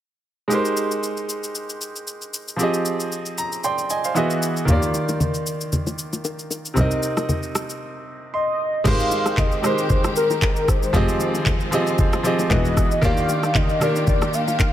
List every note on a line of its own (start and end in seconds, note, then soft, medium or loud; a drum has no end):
0.48 2.54 G#3 medium
0.48 2.55 D#4 medium
0.48 2.56 G4 medium
0.48 shaker medium
0.53 2.57 A#4 medium
0.53 2.57 C5 medium
0.65 shaker soft
0.77 shaker medium
0.91 shaker medium
1.03 shaker medium
1.17 shaker soft
1.29 shaker medium
1.44 shaker soft
1.55 shaker medium
1.69 shaker soft
1.81 shaker medium
1.96 shaker medium
2.07 shaker medium
2.22 shaker soft
2.34 shaker medium
2.48 shaker medium
2.56 4.11 F3 medium
2.56 4.12 C4 medium
2.56 4.13 G4 medium
2.56 shaker medium
2.62 4.14 G#4 medium
2.62 3.64 D#5 medium
2.74 shaker medium
2.85 shaker medium
3.00 shaker medium
3.12 shaker medium
3.26 shaker soft
3.38 3.62 A#5 medium
3.38 shaker medium
3.52 shaker soft
3.64 3.89 D5 medium
3.64 3.89 G5 medium
3.64 3.88 C6 medium
3.64 shaker medium
3.78 shaker soft
3.90 4.04 D#5 medium
3.90 4.14 G#5 medium
3.90 shaker medium
4.04 4.30 C5 medium
4.04 4.29 F5 medium
4.04 shaker medium
4.15 4.67 E3 medium
4.15 4.68 B3 medium
4.15 4.68 F#4 medium
4.15 4.69 G#4 medium
4.15 4.69 D#5 medium
4.15 4.65 E5 medium
4.15 shaker medium
4.30 shaker soft
4.43 shaker medium
4.57 shaker medium
4.65 4.76 D#2 medium
4.65 6.71 D#3 medium
4.65 6.72 A#3 medium
4.65 6.73 F4 medium
4.65 low conga medium
4.65 shaker medium
4.70 6.74 G4 medium
4.70 6.75 D5 medium
4.82 shaker medium
4.94 low bongo medium
4.94 shaker medium
5.09 high bongo medium
5.09 low bongo medium
5.09 shaker medium
5.20 high bongo medium
5.20 low conga medium
5.20 shaker medium
5.34 shaker soft
5.47 shaker medium
5.61 shaker medium
5.72 low conga medium
5.72 shaker medium
5.87 low bongo medium
5.87 shaker soft
5.99 shaker medium
6.13 low bongo medium
6.13 shaker medium
6.25 high bongo medium
6.25 shaker medium
6.39 shaker soft
6.51 high bongo medium
6.51 shaker medium
6.65 shaker medium
6.74 6.85 C2 medium
6.74 8.80 C3 medium
6.74 8.81 C4 medium
6.74 8.82 D#4 medium
6.74 low conga medium
6.74 shaker medium
6.79 8.83 A#4 medium
6.79 8.83 D#5 medium
6.91 shaker medium
7.03 shaker medium
7.17 cross-stick medium
7.17 high bongo soft
7.17 low bongo medium
7.17 shaker medium
7.29 high bongo medium
7.29 low conga medium
7.29 shaker medium
7.43 shaker soft
7.55 cross-stick loud
7.55 shaker medium
7.70 shaker medium
8.34 8.88 D#5 loud
8.34 8.82 C6 medium
8.84 8.93 G#1 medium
8.84 12.47 D#3 medium
8.84 9.49 G#3 loud
8.84 12.99 G#3 medium
8.84 10.92 C4 medium
8.84 9.49 D#4 medium
8.84 10.92 G4 medium
8.84 9.49 G4 medium
8.84 9.50 A#4 medium
8.84 9.50 C5 loud
8.84 9.40 F5 loud
8.84 kick loud
8.84 crash medium
8.84 low conga medium
8.84 shaker medium
9.00 shaker medium
9.11 low bongo medium
9.11 shaker medium
9.26 cross-stick medium
9.26 high bongo soft
9.26 shaker medium
9.37 9.66 D#5 loud
9.37 kick medium
9.37 clap medium
9.37 high bongo medium
9.37 low conga medium
9.37 shaker medium
9.52 shaker soft
9.62 10.47 G#3 medium
9.62 10.48 D#4 medium
9.62 10.48 G4 medium
9.62 10.48 A#4 medium
9.62 9.90 C5 loud
9.62 10.49 C5 medium
9.62 cross-stick loud
9.62 shaker medium
9.78 shaker medium
9.90 10.02 C5 medium
9.90 kick loud
9.90 low conga medium
9.90 shaker medium
10.04 cross-stick loud
10.04 low bongo medium
10.04 shaker soft
10.16 10.70 A#4 loud
10.16 shaker medium
10.30 low bongo medium
10.30 shaker medium
10.42 kick medium
10.42 clap medium
10.42 high bongo medium
10.42 shaker medium
10.56 shaker soft
10.68 11.73 C5 loud
10.68 kick medium
10.68 cross-stick medium
10.68 high bongo medium
10.68 shaker medium
10.83 shaker medium
10.93 11.02 F1 medium
10.93 11.57 F3 loud
10.93 11.58 C4 medium
10.93 12.49 C4 medium
10.93 12.49 F4 medium
10.93 11.58 G4 loud
10.93 11.59 G#4 medium
10.93 11.59 D#5 loud
10.93 kick loud
10.93 low conga medium
10.93 shaker medium
11.09 shaker medium
11.20 low bongo medium
11.20 shaker medium
11.35 high bongo medium
11.35 shaker medium
11.46 kick loud
11.46 clap medium
11.46 high bongo medium
11.46 low conga medium
11.46 shaker medium
11.60 shaker soft
11.71 12.15 F3 loud
11.71 12.15 C4 medium
11.71 12.15 G4 medium
11.71 12.16 G#4 medium
11.71 12.16 D#5 loud
11.71 shaker medium
11.87 shaker medium
11.98 kick loud
11.98 low conga medium
11.98 shaker medium
12.13 cross-stick loud
12.13 low bongo medium
12.13 shaker soft
12.23 12.50 F3 medium
12.23 12.51 C4 medium
12.23 12.51 G4 medium
12.23 12.50 G#4 medium
12.23 12.51 D#5 loud
12.23 shaker medium
12.39 low bongo medium
12.39 shaker medium
12.49 12.59 E1 medium
12.49 12.93 E3 medium
12.49 12.93 B3 medium
12.49 13.02 B3 medium
12.49 14.73 D#4 medium
12.49 13.02 E4 medium
12.49 12.94 F#4 medium
12.49 12.94 G#4 medium
12.49 13.05 D#5 loud
12.49 12.95 D#5 medium
12.49 kick medium
12.49 clap medium
12.49 high bongo medium
12.49 shaker medium
12.65 shaker soft
12.77 kick loud
12.77 cross-stick medium
12.77 high bongo medium
12.77 shaker medium
12.91 shaker medium
13.01 13.11 D#2 medium
13.01 13.66 D#3 loud
13.01 13.66 A#3 medium
13.01 14.73 A#3 medium
13.01 14.73 D4 medium
13.01 13.67 F4 loud
13.01 14.73 G4 medium
13.01 13.67 G4 medium
13.01 13.68 D5 loud
13.01 13.57 F5 loud
13.01 kick loud
13.01 low conga medium
13.01 shaker medium
13.17 shaker medium
13.29 low bongo medium
13.29 shaker medium
13.43 cross-stick medium
13.43 high bongo medium
13.43 shaker medium
13.55 13.83 D#5 loud
13.55 kick medium
13.55 clap medium
13.55 high bongo medium
13.55 low conga medium
13.55 shaker medium
13.69 shaker soft
13.80 14.65 D#3 medium
13.80 14.65 A#3 medium
13.80 14.65 F4 medium
13.80 14.66 G4 medium
13.80 14.66 A#4 medium
13.80 14.07 D5 medium
13.80 cross-stick loud
13.80 shaker medium
13.96 shaker medium
14.07 14.35 D5 loud
14.07 kick loud
14.07 low conga medium
14.07 shaker medium
14.22 cross-stick loud
14.22 low bongo medium
14.22 shaker soft
14.33 14.73 F5 loud
14.33 shaker medium
14.48 low bongo medium
14.48 shaker medium
14.59 kick medium
14.59 clap medium
14.59 high bongo medium
14.59 shaker medium